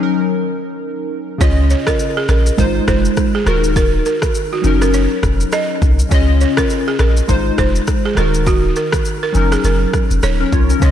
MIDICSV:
0, 0, Header, 1, 6, 480
1, 0, Start_track
1, 0, Tempo, 588235
1, 1148, Time_signature, 4, 2, 24, 8
1, 8903, End_track
2, 0, Start_track
2, 0, Title_t, "Balafon"
2, 0, Program_c, 0, 12
2, 1152, Note_on_c, 0, 73, 79
2, 1229, Note_off_c, 0, 73, 0
2, 1392, Note_on_c, 0, 73, 70
2, 1469, Note_off_c, 0, 73, 0
2, 1530, Note_on_c, 0, 70, 82
2, 1586, Note_off_c, 0, 70, 0
2, 1771, Note_on_c, 0, 68, 79
2, 1827, Note_off_c, 0, 68, 0
2, 1873, Note_on_c, 0, 70, 82
2, 1949, Note_off_c, 0, 70, 0
2, 2353, Note_on_c, 0, 72, 72
2, 2429, Note_off_c, 0, 72, 0
2, 2732, Note_on_c, 0, 68, 76
2, 2787, Note_off_c, 0, 68, 0
2, 2833, Note_on_c, 0, 70, 78
2, 2909, Note_off_c, 0, 70, 0
2, 3073, Note_on_c, 0, 70, 91
2, 3150, Note_off_c, 0, 70, 0
2, 3313, Note_on_c, 0, 70, 77
2, 3390, Note_off_c, 0, 70, 0
2, 3693, Note_on_c, 0, 66, 72
2, 3748, Note_off_c, 0, 66, 0
2, 3932, Note_on_c, 0, 70, 80
2, 3987, Note_off_c, 0, 70, 0
2, 4033, Note_on_c, 0, 73, 80
2, 4166, Note_off_c, 0, 73, 0
2, 4512, Note_on_c, 0, 75, 85
2, 4645, Note_off_c, 0, 75, 0
2, 4992, Note_on_c, 0, 73, 79
2, 5069, Note_off_c, 0, 73, 0
2, 5233, Note_on_c, 0, 73, 70
2, 5309, Note_off_c, 0, 73, 0
2, 5372, Note_on_c, 0, 70, 83
2, 5427, Note_off_c, 0, 70, 0
2, 5612, Note_on_c, 0, 68, 79
2, 5667, Note_off_c, 0, 68, 0
2, 5713, Note_on_c, 0, 70, 84
2, 5790, Note_off_c, 0, 70, 0
2, 6193, Note_on_c, 0, 72, 75
2, 6270, Note_off_c, 0, 72, 0
2, 6572, Note_on_c, 0, 68, 74
2, 6627, Note_off_c, 0, 68, 0
2, 6674, Note_on_c, 0, 70, 77
2, 6750, Note_off_c, 0, 70, 0
2, 6914, Note_on_c, 0, 66, 89
2, 6990, Note_off_c, 0, 66, 0
2, 7153, Note_on_c, 0, 70, 76
2, 7230, Note_off_c, 0, 70, 0
2, 7532, Note_on_c, 0, 70, 71
2, 7587, Note_off_c, 0, 70, 0
2, 7771, Note_on_c, 0, 68, 78
2, 7827, Note_off_c, 0, 68, 0
2, 7873, Note_on_c, 0, 70, 77
2, 8006, Note_off_c, 0, 70, 0
2, 8353, Note_on_c, 0, 73, 89
2, 8486, Note_off_c, 0, 73, 0
2, 8833, Note_on_c, 0, 73, 75
2, 8903, Note_off_c, 0, 73, 0
2, 8903, End_track
3, 0, Start_track
3, 0, Title_t, "Glass harmonica"
3, 0, Program_c, 1, 92
3, 8828, Note_on_c, 1, 65, 60
3, 8829, Note_on_c, 1, 63, 68
3, 8829, Note_on_c, 1, 73, 74
3, 8903, Note_off_c, 1, 63, 0
3, 8903, Note_off_c, 1, 65, 0
3, 8903, Note_off_c, 1, 73, 0
3, 8903, End_track
4, 0, Start_track
4, 0, Title_t, "Synth keys"
4, 0, Program_c, 2, 88
4, 0, Note_on_c, 2, 54, 71
4, 0, Note_on_c, 2, 61, 67
4, 0, Note_on_c, 2, 63, 67
4, 24, Note_on_c, 2, 70, 79
4, 96, Control_c, 2, 64, 127
4, 1115, Note_off_c, 2, 54, 0
4, 1122, Note_off_c, 2, 61, 0
4, 1128, Note_on_c, 2, 49, 76
4, 1129, Note_off_c, 2, 63, 0
4, 1142, Note_on_c, 2, 61, 64
4, 1154, Note_on_c, 2, 65, 67
4, 1158, Control_c, 2, 64, 0
4, 1163, Note_off_c, 2, 70, 0
4, 1169, Note_on_c, 2, 75, 82
4, 1279, Control_c, 2, 64, 127
4, 2079, Note_off_c, 2, 49, 0
4, 2086, Note_off_c, 2, 61, 0
4, 2092, Note_off_c, 2, 65, 0
4, 2099, Note_on_c, 2, 56, 73
4, 2100, Note_off_c, 2, 75, 0
4, 2106, Note_on_c, 2, 63, 70
4, 2113, Note_on_c, 2, 65, 70
4, 2119, Control_c, 2, 64, 0
4, 2119, Note_on_c, 2, 72, 83
4, 2245, Control_c, 2, 64, 127
4, 2809, Note_on_c, 2, 51, 72
4, 2812, Note_off_c, 2, 63, 0
4, 2822, Note_on_c, 2, 63, 65
4, 2824, Note_off_c, 2, 56, 0
4, 2831, Note_off_c, 2, 65, 0
4, 2834, Note_off_c, 2, 72, 0
4, 2836, Note_on_c, 2, 66, 67
4, 2837, Control_c, 2, 64, 0
4, 2849, Note_on_c, 2, 70, 80
4, 2961, Control_c, 2, 64, 127
4, 3759, Note_off_c, 2, 51, 0
4, 3766, Note_off_c, 2, 63, 0
4, 3769, Note_on_c, 2, 54, 72
4, 3773, Note_off_c, 2, 66, 0
4, 3780, Note_off_c, 2, 70, 0
4, 3782, Note_on_c, 2, 61, 66
4, 3795, Note_on_c, 2, 63, 65
4, 3800, Control_c, 2, 64, 0
4, 3809, Note_on_c, 2, 70, 77
4, 3961, Control_c, 2, 64, 127
4, 4954, Note_off_c, 2, 54, 0
4, 4961, Note_off_c, 2, 61, 0
4, 4968, Note_off_c, 2, 63, 0
4, 4968, Note_on_c, 2, 49, 76
4, 4975, Note_off_c, 2, 70, 0
4, 4982, Note_on_c, 2, 61, 67
4, 4995, Note_on_c, 2, 65, 69
4, 4998, Control_c, 2, 64, 0
4, 5009, Note_on_c, 2, 75, 83
4, 5129, Control_c, 2, 64, 127
4, 5919, Note_off_c, 2, 49, 0
4, 5926, Note_off_c, 2, 61, 0
4, 5933, Note_off_c, 2, 65, 0
4, 5938, Note_on_c, 2, 56, 74
4, 5940, Note_off_c, 2, 75, 0
4, 5946, Note_on_c, 2, 63, 72
4, 5952, Note_on_c, 2, 65, 66
4, 5959, Note_on_c, 2, 72, 83
4, 5960, Control_c, 2, 64, 0
4, 6102, Control_c, 2, 64, 127
4, 6648, Note_on_c, 2, 51, 74
4, 6652, Note_off_c, 2, 63, 0
4, 6662, Note_on_c, 2, 63, 67
4, 6663, Note_off_c, 2, 56, 0
4, 6670, Note_off_c, 2, 65, 0
4, 6674, Note_off_c, 2, 72, 0
4, 6676, Note_on_c, 2, 66, 68
4, 6679, Control_c, 2, 64, 0
4, 6689, Note_on_c, 2, 70, 81
4, 6820, Control_c, 2, 64, 127
4, 7599, Note_off_c, 2, 51, 0
4, 7606, Note_off_c, 2, 63, 0
4, 7609, Note_on_c, 2, 54, 77
4, 7613, Note_off_c, 2, 66, 0
4, 7619, Note_off_c, 2, 70, 0
4, 7623, Note_on_c, 2, 61, 65
4, 7636, Note_on_c, 2, 63, 67
4, 7641, Control_c, 2, 64, 0
4, 7650, Note_on_c, 2, 70, 79
4, 7805, Control_c, 2, 64, 127
4, 8331, Note_off_c, 2, 61, 0
4, 8338, Note_off_c, 2, 63, 0
4, 8345, Note_off_c, 2, 70, 0
4, 8490, Note_on_c, 2, 70, 66
4, 8495, Note_on_c, 2, 61, 55
4, 8585, Note_off_c, 2, 70, 0
4, 8588, Note_off_c, 2, 61, 0
4, 8591, Note_on_c, 2, 73, 69
4, 8597, Note_on_c, 2, 65, 59
4, 8722, Note_off_c, 2, 73, 0
4, 8725, Note_off_c, 2, 65, 0
4, 8730, Note_on_c, 2, 70, 70
4, 8735, Note_on_c, 2, 61, 54
4, 8795, Note_off_c, 2, 54, 0
4, 8810, Note_on_c, 2, 49, 75
4, 8814, Note_off_c, 2, 61, 0
4, 8824, Note_on_c, 2, 61, 70
4, 8837, Note_on_c, 2, 65, 67
4, 8839, Control_c, 2, 64, 0
4, 8851, Note_on_c, 2, 75, 80
4, 8903, Note_off_c, 2, 49, 0
4, 8903, Note_off_c, 2, 61, 0
4, 8903, Note_off_c, 2, 65, 0
4, 8903, Note_off_c, 2, 70, 0
4, 8903, Note_off_c, 2, 75, 0
4, 8903, End_track
5, 0, Start_track
5, 0, Title_t, "Sub bass"
5, 0, Program_c, 3, 38
5, 1149, Note_on_c, 3, 37, 106
5, 1426, Note_off_c, 3, 37, 0
5, 1867, Note_on_c, 3, 34, 94
5, 2043, Note_off_c, 3, 34, 0
5, 2109, Note_on_c, 3, 32, 103
5, 2284, Note_off_c, 3, 32, 0
5, 2348, Note_on_c, 3, 29, 89
5, 2524, Note_off_c, 3, 29, 0
5, 2828, Note_on_c, 3, 27, 107
5, 3281, Note_off_c, 3, 27, 0
5, 3789, Note_on_c, 3, 30, 99
5, 4140, Note_off_c, 3, 30, 0
5, 4268, Note_on_c, 3, 29, 100
5, 4444, Note_off_c, 3, 29, 0
5, 4748, Note_on_c, 3, 36, 85
5, 4924, Note_off_c, 3, 36, 0
5, 4988, Note_on_c, 3, 37, 113
5, 5266, Note_off_c, 3, 37, 0
5, 5709, Note_on_c, 3, 34, 97
5, 5884, Note_off_c, 3, 34, 0
5, 5949, Note_on_c, 3, 32, 103
5, 6124, Note_off_c, 3, 32, 0
5, 6188, Note_on_c, 3, 29, 94
5, 6364, Note_off_c, 3, 29, 0
5, 6669, Note_on_c, 3, 27, 108
5, 7122, Note_off_c, 3, 27, 0
5, 7629, Note_on_c, 3, 30, 94
5, 7804, Note_off_c, 3, 30, 0
5, 7868, Note_on_c, 3, 30, 96
5, 8044, Note_off_c, 3, 30, 0
5, 8248, Note_on_c, 3, 29, 94
5, 8322, Note_off_c, 3, 29, 0
5, 8349, Note_on_c, 3, 27, 99
5, 8525, Note_off_c, 3, 27, 0
5, 8588, Note_on_c, 3, 36, 85
5, 8764, Note_off_c, 3, 36, 0
5, 8828, Note_on_c, 3, 37, 108
5, 8903, Note_off_c, 3, 37, 0
5, 8903, End_track
6, 0, Start_track
6, 0, Title_t, "Drums"
6, 1148, Note_on_c, 9, 36, 120
6, 1149, Note_on_c, 9, 82, 75
6, 1230, Note_off_c, 9, 36, 0
6, 1231, Note_off_c, 9, 82, 0
6, 1388, Note_on_c, 9, 82, 51
6, 1470, Note_off_c, 9, 82, 0
6, 1523, Note_on_c, 9, 37, 101
6, 1527, Note_on_c, 9, 36, 82
6, 1529, Note_on_c, 9, 82, 68
6, 1605, Note_off_c, 9, 37, 0
6, 1609, Note_off_c, 9, 36, 0
6, 1611, Note_off_c, 9, 82, 0
6, 1627, Note_on_c, 9, 82, 72
6, 1708, Note_off_c, 9, 82, 0
6, 1866, Note_on_c, 9, 82, 48
6, 1867, Note_on_c, 9, 37, 91
6, 1947, Note_off_c, 9, 82, 0
6, 1949, Note_off_c, 9, 37, 0
6, 2009, Note_on_c, 9, 82, 77
6, 2091, Note_off_c, 9, 82, 0
6, 2108, Note_on_c, 9, 36, 90
6, 2108, Note_on_c, 9, 82, 75
6, 2190, Note_off_c, 9, 36, 0
6, 2190, Note_off_c, 9, 82, 0
6, 2348, Note_on_c, 9, 36, 90
6, 2348, Note_on_c, 9, 37, 97
6, 2348, Note_on_c, 9, 82, 47
6, 2429, Note_off_c, 9, 36, 0
6, 2429, Note_off_c, 9, 37, 0
6, 2430, Note_off_c, 9, 82, 0
6, 2489, Note_on_c, 9, 82, 68
6, 2571, Note_off_c, 9, 82, 0
6, 2586, Note_on_c, 9, 82, 68
6, 2588, Note_on_c, 9, 36, 83
6, 2589, Note_on_c, 9, 37, 91
6, 2667, Note_off_c, 9, 82, 0
6, 2670, Note_off_c, 9, 36, 0
6, 2670, Note_off_c, 9, 37, 0
6, 2828, Note_on_c, 9, 37, 84
6, 2828, Note_on_c, 9, 82, 51
6, 2909, Note_off_c, 9, 37, 0
6, 2910, Note_off_c, 9, 82, 0
6, 2969, Note_on_c, 9, 82, 77
6, 3051, Note_off_c, 9, 82, 0
6, 3068, Note_on_c, 9, 36, 117
6, 3069, Note_on_c, 9, 82, 78
6, 3150, Note_off_c, 9, 36, 0
6, 3151, Note_off_c, 9, 82, 0
6, 3309, Note_on_c, 9, 82, 52
6, 3390, Note_off_c, 9, 82, 0
6, 3443, Note_on_c, 9, 37, 102
6, 3448, Note_on_c, 9, 36, 83
6, 3449, Note_on_c, 9, 82, 71
6, 3525, Note_off_c, 9, 37, 0
6, 3529, Note_off_c, 9, 36, 0
6, 3531, Note_off_c, 9, 82, 0
6, 3546, Note_on_c, 9, 82, 75
6, 3628, Note_off_c, 9, 82, 0
6, 3786, Note_on_c, 9, 82, 50
6, 3868, Note_off_c, 9, 82, 0
6, 3930, Note_on_c, 9, 37, 81
6, 3931, Note_on_c, 9, 82, 78
6, 4012, Note_off_c, 9, 37, 0
6, 4012, Note_off_c, 9, 82, 0
6, 4029, Note_on_c, 9, 82, 79
6, 4110, Note_off_c, 9, 82, 0
6, 4268, Note_on_c, 9, 36, 89
6, 4268, Note_on_c, 9, 37, 95
6, 4269, Note_on_c, 9, 82, 47
6, 4350, Note_off_c, 9, 36, 0
6, 4350, Note_off_c, 9, 37, 0
6, 4350, Note_off_c, 9, 82, 0
6, 4410, Note_on_c, 9, 82, 64
6, 4491, Note_off_c, 9, 82, 0
6, 4506, Note_on_c, 9, 82, 68
6, 4509, Note_on_c, 9, 37, 94
6, 4588, Note_off_c, 9, 82, 0
6, 4591, Note_off_c, 9, 37, 0
6, 4748, Note_on_c, 9, 36, 92
6, 4749, Note_on_c, 9, 82, 50
6, 4830, Note_off_c, 9, 36, 0
6, 4831, Note_off_c, 9, 82, 0
6, 4889, Note_on_c, 9, 82, 75
6, 4971, Note_off_c, 9, 82, 0
6, 4988, Note_on_c, 9, 36, 117
6, 4989, Note_on_c, 9, 82, 79
6, 5070, Note_off_c, 9, 36, 0
6, 5070, Note_off_c, 9, 82, 0
6, 5228, Note_on_c, 9, 82, 49
6, 5310, Note_off_c, 9, 82, 0
6, 5362, Note_on_c, 9, 37, 106
6, 5367, Note_on_c, 9, 36, 80
6, 5368, Note_on_c, 9, 82, 70
6, 5444, Note_off_c, 9, 37, 0
6, 5449, Note_off_c, 9, 36, 0
6, 5450, Note_off_c, 9, 82, 0
6, 5466, Note_on_c, 9, 82, 74
6, 5547, Note_off_c, 9, 82, 0
6, 5704, Note_on_c, 9, 82, 50
6, 5706, Note_on_c, 9, 37, 92
6, 5786, Note_off_c, 9, 82, 0
6, 5787, Note_off_c, 9, 37, 0
6, 5849, Note_on_c, 9, 82, 79
6, 5930, Note_off_c, 9, 82, 0
6, 5948, Note_on_c, 9, 36, 89
6, 5948, Note_on_c, 9, 82, 76
6, 6029, Note_off_c, 9, 82, 0
6, 6030, Note_off_c, 9, 36, 0
6, 6187, Note_on_c, 9, 37, 92
6, 6187, Note_on_c, 9, 82, 48
6, 6188, Note_on_c, 9, 36, 90
6, 6268, Note_off_c, 9, 37, 0
6, 6269, Note_off_c, 9, 36, 0
6, 6269, Note_off_c, 9, 82, 0
6, 6328, Note_on_c, 9, 82, 70
6, 6410, Note_off_c, 9, 82, 0
6, 6425, Note_on_c, 9, 82, 68
6, 6428, Note_on_c, 9, 36, 89
6, 6428, Note_on_c, 9, 37, 86
6, 6506, Note_off_c, 9, 82, 0
6, 6509, Note_off_c, 9, 37, 0
6, 6510, Note_off_c, 9, 36, 0
6, 6667, Note_on_c, 9, 37, 82
6, 6667, Note_on_c, 9, 82, 49
6, 6748, Note_off_c, 9, 37, 0
6, 6749, Note_off_c, 9, 82, 0
6, 6808, Note_on_c, 9, 82, 77
6, 6890, Note_off_c, 9, 82, 0
6, 6908, Note_on_c, 9, 36, 115
6, 6908, Note_on_c, 9, 82, 76
6, 6989, Note_off_c, 9, 82, 0
6, 6990, Note_off_c, 9, 36, 0
6, 7147, Note_on_c, 9, 82, 50
6, 7229, Note_off_c, 9, 82, 0
6, 7282, Note_on_c, 9, 37, 101
6, 7288, Note_on_c, 9, 36, 82
6, 7288, Note_on_c, 9, 82, 68
6, 7364, Note_off_c, 9, 37, 0
6, 7369, Note_off_c, 9, 36, 0
6, 7370, Note_off_c, 9, 82, 0
6, 7386, Note_on_c, 9, 82, 74
6, 7467, Note_off_c, 9, 82, 0
6, 7626, Note_on_c, 9, 82, 49
6, 7707, Note_off_c, 9, 82, 0
6, 7768, Note_on_c, 9, 37, 83
6, 7769, Note_on_c, 9, 82, 80
6, 7850, Note_off_c, 9, 37, 0
6, 7851, Note_off_c, 9, 82, 0
6, 7868, Note_on_c, 9, 82, 75
6, 7950, Note_off_c, 9, 82, 0
6, 8107, Note_on_c, 9, 37, 92
6, 8108, Note_on_c, 9, 36, 90
6, 8108, Note_on_c, 9, 82, 47
6, 8189, Note_off_c, 9, 36, 0
6, 8189, Note_off_c, 9, 37, 0
6, 8189, Note_off_c, 9, 82, 0
6, 8248, Note_on_c, 9, 82, 67
6, 8330, Note_off_c, 9, 82, 0
6, 8345, Note_on_c, 9, 82, 73
6, 8348, Note_on_c, 9, 37, 85
6, 8427, Note_off_c, 9, 82, 0
6, 8430, Note_off_c, 9, 37, 0
6, 8588, Note_on_c, 9, 36, 90
6, 8589, Note_on_c, 9, 82, 48
6, 8670, Note_off_c, 9, 36, 0
6, 8671, Note_off_c, 9, 82, 0
6, 8729, Note_on_c, 9, 82, 77
6, 8810, Note_off_c, 9, 82, 0
6, 8828, Note_on_c, 9, 36, 115
6, 8829, Note_on_c, 9, 82, 78
6, 8903, Note_off_c, 9, 36, 0
6, 8903, Note_off_c, 9, 82, 0
6, 8903, End_track
0, 0, End_of_file